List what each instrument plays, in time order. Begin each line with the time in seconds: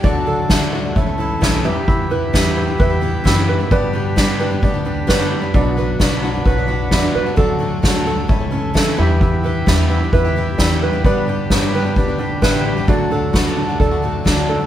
0.03 upright piano D2 D3 F#3 A3 D4 A4 D5, upright bass D2, steel-string acoustic guitar D3 F#3 A3 D4 F#4, harmonium F#4 A4 D5 A5, ukulele D5, kick
0.26 steel-string acoustic guitar F#3 A3 D4 F#4, ukulele A4
0.49 upright bass D2, steel-string acoustic guitar D3 F#3 A3 D4 F#4, upright piano F#3 A3 D4 A4 E5, kick, snare
0.72 steel-string acoustic guitar F#3 A3 D4 F#4, ukulele D5
0.84 steel-string acoustic guitar A3 D4 F#4
0.95 upright piano C#2 C#3 A3 C#4 E4 C#5 E5, upright bass C#2, steel-string acoustic guitar E3 A3 C#4 A4, harmonium E4 A4 C#5 A5, kick
1.06 steel-string acoustic guitar A3 C#4 A4
1.18 steel-string acoustic guitar E3 A3 C#4 A4, ukulele E4
1.41 upright bass B1, steel-string acoustic guitar C#3 E3 A3 C#4 A4, upright piano A3 C#4 E4 C#5 E5, ukulele C#5, kick, snare
1.64 upright bass E2, upright piano E2 E3 G3 B3 E4 B4 E5, steel-string acoustic guitar E3 B3 E4 G4, harmonium G4 B4 E5 B5, ukulele G4
1.88 ukulele E4, kick
2.10 steel-string acoustic guitar E3 B3 E4 G4, ukulele B4
2.33 upright bass E2, steel-string acoustic guitar E3 B3 E4 G4, upright piano G3 B3 E4 B4 E5, ukulele G4, kick, snare
2.55 steel-string acoustic guitar E3 B3 E4 G4, ukulele E4
2.67 steel-string acoustic guitar B3 E4 G4
2.78 upright bass E2, steel-string acoustic guitar E3 B3 E4 G4, upright piano G3 B3 E4 B4 E5, ukulele B4, kick
2.90 steel-string acoustic guitar B3 E4 G4
3.01 steel-string acoustic guitar E3 B3 E4 G4
3.24 upright bass F#2, steel-string acoustic guitar E3 B3 E4 G4, upright piano B3 E4 G4 B4 G5, ukulele E4, kick, snare
3.49 ukulele B4
3.59 steel-string acoustic guitar B3 E4 G4
3.70 upright piano G1 B2 G3 B3 D4 B4 D5, steel-string acoustic guitar G2 D3 G3 B3 D4 G4, upright bass G2, harmonium D4 B4, ukulele B4, kick
3.93 steel-string acoustic guitar G3 B3 D4 G4, ukulele G4
4.16 steel-string acoustic guitar G2 D3 G3 B3 D4 G4, upright bass G2, upright piano G3 B3 D4 B4 D5, kick, snare
4.39 steel-string acoustic guitar G3 B3 D4 G4, ukulele B4
4.51 steel-string acoustic guitar G3 B3 D4 G4
4.62 upright bass D2, steel-string acoustic guitar G3 B3 D4 G4, upright piano G3 B3 D4 B4 D5, kick
4.74 steel-string acoustic guitar G3 B3 D4 G4
4.85 steel-string acoustic guitar G3 B3 D4 G4, ukulele D4
5.07 upright bass F#2, steel-string acoustic guitar D3 B3 D4 G4, upright piano B3 D4 G4 B4 C#5, ukulele B4, kick, snare
5.31 ukulele G4
5.41 steel-string acoustic guitar G3 B3 D4 G4
5.53 upright bass B1, upright piano B1 B2 F#3 B3 D4 B4 D5, steel-string acoustic guitar B2 F#3 B3 D4 F#4, harmonium D4 F#4, ukulele D4, kick
5.76 steel-string acoustic guitar F#3 B3 D4 F#4, ukulele B4
5.99 upright bass B1, steel-string acoustic guitar B2 F#3 B3 D4 F#4, upright piano F#3 B3 D4 B4 D5, ukulele F#4, kick, snare
6.22 steel-string acoustic guitar F#3 B3 D4 F#4, ukulele D4
6.34 steel-string acoustic guitar B3 D4 F#4
6.45 upright bass B1, steel-string acoustic guitar F#3 B3 D4 F#4, upright piano F#3 B3 D4 B4 C#5, ukulele B4, kick
6.57 steel-string acoustic guitar B3 D4 F#4
6.67 steel-string acoustic guitar F#3 B3 D4 F#4
6.71 upright piano F#5
6.91 upright bass E2, steel-string acoustic guitar B2 F#3 B3 D4 F#4, upright piano F#3 B3 D4 B4 D5 E5, ukulele D4, kick, snare
7.15 upright bass D2, ukulele B4, upright piano D5
7.26 steel-string acoustic guitar B3 D4 F#4
7.36 upright bass D2, upright piano D2 D3 F#3 A3 D4 A4 D5, steel-string acoustic guitar D3 F#3 A3 D4 F#4, ukulele A4, harmonium A4 A5, kick
7.59 steel-string acoustic guitar F#3 A3 D4 F#4, ukulele F#4
7.82 upright bass D2, steel-string acoustic guitar D3 F#3 A3 D4 F#4, upright piano F#3 A3 D4 A4 C#5, kick, snare
8.05 steel-string acoustic guitar F#3 A3 D4 F#4, ukulele A4
8.15 steel-string acoustic guitar A3 D4 F#4
8.28 upright bass C#2, upright piano C#2 C#3 A3 C#4 E4 C#5 E5, steel-string acoustic guitar E3 A3 C#4 A4, harmonium E4 C#5 A5, kick
8.39 steel-string acoustic guitar A3 C#4 A4
8.51 steel-string acoustic guitar E3 A3 C#4 A4, ukulele C#4
8.74 steel-string acoustic guitar C#3 E3 A3 C#4 A4, upright bass C#3, upright piano A3 C#4 E4 C#5 E5, ukulele A4, kick, snare
8.97 upright piano E2 E3 G3 B3 E4 B4 E5, upright bass E2, steel-string acoustic guitar E3 B3 E4 G4, harmonium G4 B4 E5 B5, ukulele G4
9.21 ukulele E4, kick
9.44 steel-string acoustic guitar E3 B3 E4 G4, ukulele B4
9.66 upright bass E2, steel-string acoustic guitar E3 B3 E4 G4, upright piano G3 B3 E4 B4 E5, ukulele G4, kick, snare
9.89 steel-string acoustic guitar E3 B3 E4 G4, ukulele E4
10.02 steel-string acoustic guitar B3 E4 G4
10.13 upright bass E2, steel-string acoustic guitar E3 B3 E4 G4, upright piano G3 B3 E4 B4 E5, ukulele B4, kick
10.25 steel-string acoustic guitar B3 E4 G4
10.36 steel-string acoustic guitar E3 B3 E4 G4
10.57 upright bass E2, steel-string acoustic guitar E3 B3 E4 G4, upright piano G3 B3 E4 B4 D5, ukulele E4, kick, snare
10.83 ukulele B4
10.93 steel-string acoustic guitar B3 E4 G4
11.04 upright piano G1 G2 G3 B3 D4 B4 D5, upright bass G2, steel-string acoustic guitar G2 D3 G3 B3 D4 G4, harmonium D4 B4, ukulele B4, kick
11.27 steel-string acoustic guitar G3 B3 D4 G4, ukulele G4
11.50 steel-string acoustic guitar G2 D3 G3 B3 D4 G4, upright bass G2, upright piano G3 B3 D4 B4 C#5, kick, snare
11.73 steel-string acoustic guitar G3 B3 D4 G4, ukulele B4
11.85 steel-string acoustic guitar G3 B3 D4 G4
11.96 upright bass D2, steel-string acoustic guitar G3 B3 D4 G4, upright piano G3 B3 D4 B4 D5, kick
12.07 steel-string acoustic guitar G3 B3 D4 G4
12.18 steel-string acoustic guitar G3 B3 D4 G4, ukulele D4
12.42 upright bass A1, steel-string acoustic guitar G2 D3 G3 B3 D4 G4, upright piano G3 B3 D4 B4 E5, ukulele B4, kick, snare
12.65 ukulele G4
12.77 steel-string acoustic guitar G3 B3 D4 G4
12.87 upright bass D2, upright piano D2 D3 F#3 A3 D4 A4 D5, steel-string acoustic guitar D3 F#3 A3 D4 F#4, ukulele D4, harmonium F#4 A4 A5, kick
13.11 steel-string acoustic guitar F#3 A3 D4 F#4, ukulele A4
13.32 upright bass D2, steel-string acoustic guitar D3 F#3 A3 D4 F#4, upright piano F#3 A3 D4 A4 B4, ukulele F#4, kick, snare
13.56 steel-string acoustic guitar F#3 A3 D4 F#4, ukulele D4
13.68 steel-string acoustic guitar A3 D4 F#4
13.79 upright bass D2, upright piano F#3 A3 D4 A4 D5, steel-string acoustic guitar F#3 A3 D4 F#4, ukulele A4, kick
13.91 steel-string acoustic guitar A3 D4 F#4
14.02 steel-string acoustic guitar F#3 A3 D4 F#4
14.25 upright bass D2, steel-string acoustic guitar D3 F#3 A3 D4 F#4, upright piano F#3 A3 D4 A4 D5, ukulele D4, kick, snare
14.49 ukulele A4
14.60 steel-string acoustic guitar A3 D4 F#4